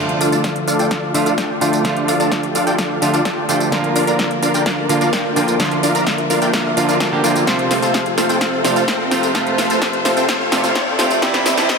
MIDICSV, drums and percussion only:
0, 0, Header, 1, 2, 480
1, 0, Start_track
1, 0, Key_signature, -1, "major"
1, 0, Tempo, 468750
1, 1892, Time_signature, 4, 2, 24, 8
1, 12065, End_track
2, 0, Start_track
2, 0, Title_t, "Drums"
2, 93, Note_on_c, 9, 42, 36
2, 195, Note_off_c, 9, 42, 0
2, 212, Note_on_c, 9, 46, 98
2, 218, Note_on_c, 9, 54, 71
2, 314, Note_off_c, 9, 46, 0
2, 321, Note_off_c, 9, 54, 0
2, 332, Note_on_c, 9, 42, 53
2, 339, Note_on_c, 9, 54, 43
2, 435, Note_off_c, 9, 42, 0
2, 441, Note_off_c, 9, 54, 0
2, 452, Note_on_c, 9, 36, 106
2, 452, Note_on_c, 9, 38, 46
2, 452, Note_on_c, 9, 42, 72
2, 458, Note_on_c, 9, 54, 29
2, 554, Note_off_c, 9, 36, 0
2, 554, Note_off_c, 9, 38, 0
2, 554, Note_off_c, 9, 42, 0
2, 560, Note_off_c, 9, 54, 0
2, 572, Note_on_c, 9, 42, 37
2, 674, Note_off_c, 9, 42, 0
2, 692, Note_on_c, 9, 46, 83
2, 698, Note_on_c, 9, 54, 73
2, 794, Note_off_c, 9, 46, 0
2, 800, Note_off_c, 9, 54, 0
2, 812, Note_on_c, 9, 42, 50
2, 818, Note_on_c, 9, 54, 41
2, 914, Note_off_c, 9, 42, 0
2, 921, Note_off_c, 9, 54, 0
2, 931, Note_on_c, 9, 36, 111
2, 932, Note_on_c, 9, 38, 49
2, 932, Note_on_c, 9, 42, 77
2, 938, Note_on_c, 9, 54, 31
2, 1034, Note_off_c, 9, 36, 0
2, 1035, Note_off_c, 9, 38, 0
2, 1035, Note_off_c, 9, 42, 0
2, 1041, Note_off_c, 9, 54, 0
2, 1172, Note_on_c, 9, 46, 100
2, 1178, Note_on_c, 9, 54, 77
2, 1275, Note_off_c, 9, 46, 0
2, 1281, Note_off_c, 9, 54, 0
2, 1292, Note_on_c, 9, 42, 53
2, 1298, Note_on_c, 9, 54, 44
2, 1394, Note_off_c, 9, 42, 0
2, 1401, Note_off_c, 9, 54, 0
2, 1411, Note_on_c, 9, 36, 113
2, 1412, Note_on_c, 9, 38, 49
2, 1412, Note_on_c, 9, 42, 80
2, 1418, Note_on_c, 9, 54, 31
2, 1514, Note_off_c, 9, 36, 0
2, 1514, Note_off_c, 9, 38, 0
2, 1514, Note_off_c, 9, 42, 0
2, 1521, Note_off_c, 9, 54, 0
2, 1652, Note_on_c, 9, 46, 85
2, 1658, Note_on_c, 9, 54, 71
2, 1754, Note_off_c, 9, 46, 0
2, 1760, Note_off_c, 9, 54, 0
2, 1772, Note_on_c, 9, 42, 50
2, 1778, Note_on_c, 9, 54, 40
2, 1874, Note_off_c, 9, 42, 0
2, 1880, Note_off_c, 9, 54, 0
2, 1891, Note_on_c, 9, 36, 112
2, 1892, Note_on_c, 9, 38, 52
2, 1892, Note_on_c, 9, 42, 76
2, 1898, Note_on_c, 9, 54, 30
2, 1994, Note_off_c, 9, 36, 0
2, 1994, Note_off_c, 9, 38, 0
2, 1994, Note_off_c, 9, 42, 0
2, 2001, Note_off_c, 9, 54, 0
2, 2012, Note_on_c, 9, 42, 34
2, 2115, Note_off_c, 9, 42, 0
2, 2132, Note_on_c, 9, 46, 104
2, 2139, Note_on_c, 9, 54, 72
2, 2235, Note_off_c, 9, 46, 0
2, 2241, Note_off_c, 9, 54, 0
2, 2252, Note_on_c, 9, 42, 51
2, 2258, Note_on_c, 9, 54, 43
2, 2354, Note_off_c, 9, 42, 0
2, 2361, Note_off_c, 9, 54, 0
2, 2371, Note_on_c, 9, 36, 110
2, 2372, Note_on_c, 9, 38, 50
2, 2372, Note_on_c, 9, 42, 72
2, 2378, Note_on_c, 9, 54, 30
2, 2474, Note_off_c, 9, 36, 0
2, 2475, Note_off_c, 9, 38, 0
2, 2475, Note_off_c, 9, 42, 0
2, 2481, Note_off_c, 9, 54, 0
2, 2492, Note_on_c, 9, 42, 37
2, 2595, Note_off_c, 9, 42, 0
2, 2612, Note_on_c, 9, 46, 91
2, 2618, Note_on_c, 9, 54, 72
2, 2714, Note_off_c, 9, 46, 0
2, 2720, Note_off_c, 9, 54, 0
2, 2732, Note_on_c, 9, 42, 50
2, 2739, Note_on_c, 9, 54, 41
2, 2835, Note_off_c, 9, 42, 0
2, 2841, Note_off_c, 9, 54, 0
2, 2851, Note_on_c, 9, 36, 117
2, 2852, Note_on_c, 9, 38, 53
2, 2852, Note_on_c, 9, 42, 75
2, 2858, Note_on_c, 9, 54, 29
2, 2954, Note_off_c, 9, 36, 0
2, 2955, Note_off_c, 9, 38, 0
2, 2955, Note_off_c, 9, 42, 0
2, 2961, Note_off_c, 9, 54, 0
2, 3092, Note_on_c, 9, 46, 109
2, 3098, Note_on_c, 9, 54, 74
2, 3194, Note_off_c, 9, 46, 0
2, 3200, Note_off_c, 9, 54, 0
2, 3212, Note_on_c, 9, 42, 52
2, 3218, Note_on_c, 9, 54, 43
2, 3314, Note_off_c, 9, 42, 0
2, 3320, Note_off_c, 9, 54, 0
2, 3331, Note_on_c, 9, 36, 109
2, 3332, Note_on_c, 9, 38, 56
2, 3332, Note_on_c, 9, 42, 78
2, 3338, Note_on_c, 9, 54, 31
2, 3434, Note_off_c, 9, 36, 0
2, 3434, Note_off_c, 9, 38, 0
2, 3434, Note_off_c, 9, 42, 0
2, 3440, Note_off_c, 9, 54, 0
2, 3572, Note_on_c, 9, 46, 94
2, 3578, Note_on_c, 9, 54, 72
2, 3674, Note_off_c, 9, 46, 0
2, 3680, Note_off_c, 9, 54, 0
2, 3692, Note_on_c, 9, 42, 49
2, 3698, Note_on_c, 9, 54, 41
2, 3794, Note_off_c, 9, 42, 0
2, 3800, Note_off_c, 9, 54, 0
2, 3811, Note_on_c, 9, 36, 124
2, 3812, Note_on_c, 9, 38, 60
2, 3812, Note_on_c, 9, 42, 74
2, 3818, Note_on_c, 9, 54, 31
2, 3914, Note_off_c, 9, 36, 0
2, 3914, Note_off_c, 9, 38, 0
2, 3914, Note_off_c, 9, 42, 0
2, 3920, Note_off_c, 9, 54, 0
2, 3932, Note_on_c, 9, 42, 36
2, 4034, Note_off_c, 9, 42, 0
2, 4051, Note_on_c, 9, 46, 104
2, 4058, Note_on_c, 9, 54, 71
2, 4154, Note_off_c, 9, 46, 0
2, 4160, Note_off_c, 9, 54, 0
2, 4172, Note_on_c, 9, 42, 50
2, 4178, Note_on_c, 9, 54, 41
2, 4274, Note_off_c, 9, 42, 0
2, 4280, Note_off_c, 9, 54, 0
2, 4291, Note_on_c, 9, 36, 113
2, 4292, Note_on_c, 9, 38, 59
2, 4292, Note_on_c, 9, 42, 71
2, 4298, Note_on_c, 9, 54, 29
2, 4394, Note_off_c, 9, 36, 0
2, 4394, Note_off_c, 9, 38, 0
2, 4394, Note_off_c, 9, 42, 0
2, 4400, Note_off_c, 9, 54, 0
2, 4412, Note_on_c, 9, 42, 35
2, 4514, Note_off_c, 9, 42, 0
2, 4531, Note_on_c, 9, 46, 93
2, 4538, Note_on_c, 9, 54, 72
2, 4634, Note_off_c, 9, 46, 0
2, 4640, Note_off_c, 9, 54, 0
2, 4652, Note_on_c, 9, 42, 48
2, 4658, Note_on_c, 9, 54, 42
2, 4754, Note_off_c, 9, 42, 0
2, 4760, Note_off_c, 9, 54, 0
2, 4771, Note_on_c, 9, 36, 123
2, 4771, Note_on_c, 9, 38, 61
2, 4771, Note_on_c, 9, 42, 73
2, 4777, Note_on_c, 9, 54, 31
2, 4874, Note_off_c, 9, 36, 0
2, 4874, Note_off_c, 9, 38, 0
2, 4874, Note_off_c, 9, 42, 0
2, 4880, Note_off_c, 9, 54, 0
2, 5011, Note_on_c, 9, 46, 113
2, 5018, Note_on_c, 9, 54, 73
2, 5114, Note_off_c, 9, 46, 0
2, 5120, Note_off_c, 9, 54, 0
2, 5132, Note_on_c, 9, 42, 51
2, 5138, Note_on_c, 9, 54, 42
2, 5234, Note_off_c, 9, 42, 0
2, 5240, Note_off_c, 9, 54, 0
2, 5251, Note_on_c, 9, 36, 119
2, 5252, Note_on_c, 9, 38, 65
2, 5252, Note_on_c, 9, 42, 74
2, 5258, Note_on_c, 9, 54, 31
2, 5354, Note_off_c, 9, 36, 0
2, 5354, Note_off_c, 9, 38, 0
2, 5354, Note_off_c, 9, 42, 0
2, 5360, Note_off_c, 9, 54, 0
2, 5492, Note_on_c, 9, 46, 93
2, 5498, Note_on_c, 9, 54, 74
2, 5594, Note_off_c, 9, 46, 0
2, 5600, Note_off_c, 9, 54, 0
2, 5612, Note_on_c, 9, 42, 47
2, 5618, Note_on_c, 9, 54, 40
2, 5714, Note_off_c, 9, 42, 0
2, 5720, Note_off_c, 9, 54, 0
2, 5731, Note_on_c, 9, 38, 65
2, 5731, Note_on_c, 9, 42, 74
2, 5732, Note_on_c, 9, 36, 120
2, 5738, Note_on_c, 9, 54, 31
2, 5834, Note_off_c, 9, 36, 0
2, 5834, Note_off_c, 9, 38, 0
2, 5834, Note_off_c, 9, 42, 0
2, 5840, Note_off_c, 9, 54, 0
2, 5852, Note_on_c, 9, 42, 34
2, 5954, Note_off_c, 9, 42, 0
2, 5972, Note_on_c, 9, 46, 105
2, 5978, Note_on_c, 9, 54, 72
2, 6074, Note_off_c, 9, 46, 0
2, 6080, Note_off_c, 9, 54, 0
2, 6092, Note_on_c, 9, 42, 51
2, 6098, Note_on_c, 9, 54, 42
2, 6195, Note_off_c, 9, 42, 0
2, 6201, Note_off_c, 9, 54, 0
2, 6212, Note_on_c, 9, 36, 116
2, 6212, Note_on_c, 9, 38, 63
2, 6212, Note_on_c, 9, 42, 72
2, 6219, Note_on_c, 9, 54, 30
2, 6314, Note_off_c, 9, 36, 0
2, 6315, Note_off_c, 9, 38, 0
2, 6315, Note_off_c, 9, 42, 0
2, 6321, Note_off_c, 9, 54, 0
2, 6331, Note_on_c, 9, 42, 34
2, 6434, Note_off_c, 9, 42, 0
2, 6452, Note_on_c, 9, 46, 91
2, 6458, Note_on_c, 9, 54, 72
2, 6554, Note_off_c, 9, 46, 0
2, 6560, Note_off_c, 9, 54, 0
2, 6572, Note_on_c, 9, 42, 49
2, 6578, Note_on_c, 9, 54, 41
2, 6674, Note_off_c, 9, 42, 0
2, 6680, Note_off_c, 9, 54, 0
2, 6692, Note_on_c, 9, 36, 120
2, 6692, Note_on_c, 9, 38, 69
2, 6692, Note_on_c, 9, 42, 74
2, 6698, Note_on_c, 9, 54, 31
2, 6794, Note_off_c, 9, 36, 0
2, 6794, Note_off_c, 9, 38, 0
2, 6794, Note_off_c, 9, 42, 0
2, 6800, Note_off_c, 9, 54, 0
2, 6932, Note_on_c, 9, 46, 102
2, 6939, Note_on_c, 9, 54, 74
2, 7035, Note_off_c, 9, 46, 0
2, 7041, Note_off_c, 9, 54, 0
2, 7052, Note_on_c, 9, 42, 49
2, 7059, Note_on_c, 9, 54, 44
2, 7155, Note_off_c, 9, 42, 0
2, 7161, Note_off_c, 9, 54, 0
2, 7172, Note_on_c, 9, 36, 117
2, 7173, Note_on_c, 9, 38, 72
2, 7173, Note_on_c, 9, 42, 77
2, 7179, Note_on_c, 9, 54, 30
2, 7274, Note_off_c, 9, 36, 0
2, 7275, Note_off_c, 9, 38, 0
2, 7275, Note_off_c, 9, 42, 0
2, 7281, Note_off_c, 9, 54, 0
2, 7413, Note_on_c, 9, 46, 92
2, 7419, Note_on_c, 9, 54, 72
2, 7515, Note_off_c, 9, 46, 0
2, 7521, Note_off_c, 9, 54, 0
2, 7533, Note_on_c, 9, 42, 45
2, 7539, Note_on_c, 9, 54, 41
2, 7635, Note_off_c, 9, 42, 0
2, 7641, Note_off_c, 9, 54, 0
2, 7652, Note_on_c, 9, 36, 112
2, 7653, Note_on_c, 9, 38, 76
2, 7653, Note_on_c, 9, 42, 76
2, 7659, Note_on_c, 9, 54, 33
2, 7754, Note_off_c, 9, 36, 0
2, 7755, Note_off_c, 9, 38, 0
2, 7755, Note_off_c, 9, 42, 0
2, 7761, Note_off_c, 9, 54, 0
2, 7773, Note_on_c, 9, 42, 34
2, 7875, Note_off_c, 9, 42, 0
2, 7892, Note_on_c, 9, 38, 69
2, 7892, Note_on_c, 9, 46, 98
2, 7899, Note_on_c, 9, 54, 74
2, 7995, Note_off_c, 9, 38, 0
2, 7995, Note_off_c, 9, 46, 0
2, 8001, Note_off_c, 9, 54, 0
2, 8013, Note_on_c, 9, 42, 50
2, 8019, Note_on_c, 9, 54, 43
2, 8115, Note_off_c, 9, 42, 0
2, 8122, Note_off_c, 9, 54, 0
2, 8132, Note_on_c, 9, 36, 112
2, 8133, Note_on_c, 9, 38, 74
2, 8133, Note_on_c, 9, 42, 70
2, 8139, Note_on_c, 9, 54, 33
2, 8234, Note_off_c, 9, 36, 0
2, 8236, Note_off_c, 9, 38, 0
2, 8236, Note_off_c, 9, 42, 0
2, 8242, Note_off_c, 9, 54, 0
2, 8253, Note_on_c, 9, 42, 35
2, 8356, Note_off_c, 9, 42, 0
2, 8373, Note_on_c, 9, 38, 72
2, 8373, Note_on_c, 9, 46, 88
2, 8379, Note_on_c, 9, 54, 80
2, 8475, Note_off_c, 9, 38, 0
2, 8475, Note_off_c, 9, 46, 0
2, 8481, Note_off_c, 9, 54, 0
2, 8493, Note_on_c, 9, 42, 48
2, 8499, Note_on_c, 9, 54, 43
2, 8595, Note_off_c, 9, 42, 0
2, 8602, Note_off_c, 9, 54, 0
2, 8612, Note_on_c, 9, 36, 114
2, 8613, Note_on_c, 9, 38, 73
2, 8613, Note_on_c, 9, 42, 74
2, 8619, Note_on_c, 9, 54, 32
2, 8714, Note_off_c, 9, 36, 0
2, 8715, Note_off_c, 9, 38, 0
2, 8715, Note_off_c, 9, 42, 0
2, 8722, Note_off_c, 9, 54, 0
2, 8853, Note_on_c, 9, 38, 79
2, 8853, Note_on_c, 9, 46, 105
2, 8859, Note_on_c, 9, 54, 78
2, 8955, Note_off_c, 9, 38, 0
2, 8955, Note_off_c, 9, 46, 0
2, 8961, Note_off_c, 9, 54, 0
2, 8973, Note_on_c, 9, 42, 51
2, 8979, Note_on_c, 9, 54, 45
2, 9075, Note_off_c, 9, 42, 0
2, 9082, Note_off_c, 9, 54, 0
2, 9092, Note_on_c, 9, 36, 116
2, 9093, Note_on_c, 9, 38, 77
2, 9093, Note_on_c, 9, 42, 73
2, 9099, Note_on_c, 9, 54, 33
2, 9194, Note_off_c, 9, 36, 0
2, 9195, Note_off_c, 9, 38, 0
2, 9195, Note_off_c, 9, 42, 0
2, 9202, Note_off_c, 9, 54, 0
2, 9333, Note_on_c, 9, 38, 82
2, 9333, Note_on_c, 9, 46, 92
2, 9339, Note_on_c, 9, 54, 79
2, 9436, Note_off_c, 9, 38, 0
2, 9436, Note_off_c, 9, 46, 0
2, 9442, Note_off_c, 9, 54, 0
2, 9453, Note_on_c, 9, 42, 50
2, 9459, Note_on_c, 9, 54, 43
2, 9555, Note_off_c, 9, 42, 0
2, 9561, Note_off_c, 9, 54, 0
2, 9572, Note_on_c, 9, 36, 113
2, 9573, Note_on_c, 9, 38, 83
2, 9573, Note_on_c, 9, 42, 78
2, 9579, Note_on_c, 9, 54, 34
2, 9675, Note_off_c, 9, 36, 0
2, 9675, Note_off_c, 9, 38, 0
2, 9675, Note_off_c, 9, 42, 0
2, 9682, Note_off_c, 9, 54, 0
2, 9693, Note_on_c, 9, 42, 36
2, 9795, Note_off_c, 9, 42, 0
2, 9813, Note_on_c, 9, 38, 83
2, 9813, Note_on_c, 9, 46, 103
2, 9819, Note_on_c, 9, 54, 79
2, 9915, Note_off_c, 9, 38, 0
2, 9915, Note_off_c, 9, 46, 0
2, 9921, Note_off_c, 9, 54, 0
2, 9933, Note_on_c, 9, 42, 52
2, 9939, Note_on_c, 9, 54, 47
2, 10035, Note_off_c, 9, 42, 0
2, 10041, Note_off_c, 9, 54, 0
2, 10052, Note_on_c, 9, 36, 110
2, 10053, Note_on_c, 9, 38, 81
2, 10053, Note_on_c, 9, 42, 75
2, 10059, Note_on_c, 9, 54, 34
2, 10155, Note_off_c, 9, 36, 0
2, 10155, Note_off_c, 9, 38, 0
2, 10155, Note_off_c, 9, 42, 0
2, 10162, Note_off_c, 9, 54, 0
2, 10172, Note_on_c, 9, 42, 36
2, 10275, Note_off_c, 9, 42, 0
2, 10292, Note_on_c, 9, 38, 84
2, 10292, Note_on_c, 9, 46, 86
2, 10299, Note_on_c, 9, 54, 82
2, 10395, Note_off_c, 9, 38, 0
2, 10395, Note_off_c, 9, 46, 0
2, 10401, Note_off_c, 9, 54, 0
2, 10412, Note_on_c, 9, 42, 50
2, 10418, Note_on_c, 9, 54, 45
2, 10515, Note_off_c, 9, 42, 0
2, 10521, Note_off_c, 9, 54, 0
2, 10532, Note_on_c, 9, 36, 115
2, 10533, Note_on_c, 9, 38, 83
2, 10533, Note_on_c, 9, 42, 78
2, 10539, Note_on_c, 9, 54, 34
2, 10635, Note_off_c, 9, 36, 0
2, 10635, Note_off_c, 9, 38, 0
2, 10635, Note_off_c, 9, 42, 0
2, 10641, Note_off_c, 9, 54, 0
2, 10773, Note_on_c, 9, 38, 91
2, 10773, Note_on_c, 9, 46, 105
2, 10779, Note_on_c, 9, 54, 81
2, 10875, Note_off_c, 9, 38, 0
2, 10875, Note_off_c, 9, 46, 0
2, 10881, Note_off_c, 9, 54, 0
2, 10893, Note_on_c, 9, 42, 51
2, 10899, Note_on_c, 9, 54, 48
2, 10995, Note_off_c, 9, 42, 0
2, 11001, Note_off_c, 9, 54, 0
2, 11012, Note_on_c, 9, 36, 107
2, 11012, Note_on_c, 9, 38, 88
2, 11012, Note_on_c, 9, 42, 80
2, 11019, Note_on_c, 9, 54, 35
2, 11114, Note_off_c, 9, 36, 0
2, 11115, Note_off_c, 9, 38, 0
2, 11115, Note_off_c, 9, 42, 0
2, 11121, Note_off_c, 9, 54, 0
2, 11252, Note_on_c, 9, 38, 89
2, 11252, Note_on_c, 9, 46, 88
2, 11258, Note_on_c, 9, 54, 80
2, 11354, Note_off_c, 9, 38, 0
2, 11354, Note_off_c, 9, 46, 0
2, 11360, Note_off_c, 9, 54, 0
2, 11372, Note_on_c, 9, 42, 52
2, 11378, Note_on_c, 9, 54, 46
2, 11474, Note_off_c, 9, 42, 0
2, 11480, Note_off_c, 9, 54, 0
2, 11492, Note_on_c, 9, 36, 115
2, 11492, Note_on_c, 9, 38, 89
2, 11492, Note_on_c, 9, 42, 82
2, 11498, Note_on_c, 9, 54, 36
2, 11594, Note_off_c, 9, 36, 0
2, 11594, Note_off_c, 9, 38, 0
2, 11594, Note_off_c, 9, 42, 0
2, 11601, Note_off_c, 9, 54, 0
2, 11612, Note_on_c, 9, 38, 81
2, 11612, Note_on_c, 9, 42, 39
2, 11715, Note_off_c, 9, 38, 0
2, 11715, Note_off_c, 9, 42, 0
2, 11732, Note_on_c, 9, 38, 89
2, 11732, Note_on_c, 9, 46, 101
2, 11738, Note_on_c, 9, 54, 82
2, 11834, Note_off_c, 9, 38, 0
2, 11834, Note_off_c, 9, 46, 0
2, 11841, Note_off_c, 9, 54, 0
2, 11852, Note_on_c, 9, 38, 84
2, 11852, Note_on_c, 9, 42, 56
2, 11859, Note_on_c, 9, 54, 47
2, 11955, Note_off_c, 9, 38, 0
2, 11955, Note_off_c, 9, 42, 0
2, 11961, Note_off_c, 9, 54, 0
2, 11972, Note_on_c, 9, 36, 109
2, 11973, Note_on_c, 9, 38, 92
2, 11973, Note_on_c, 9, 42, 78
2, 11979, Note_on_c, 9, 54, 34
2, 12065, Note_off_c, 9, 36, 0
2, 12065, Note_off_c, 9, 38, 0
2, 12065, Note_off_c, 9, 42, 0
2, 12065, Note_off_c, 9, 54, 0
2, 12065, End_track
0, 0, End_of_file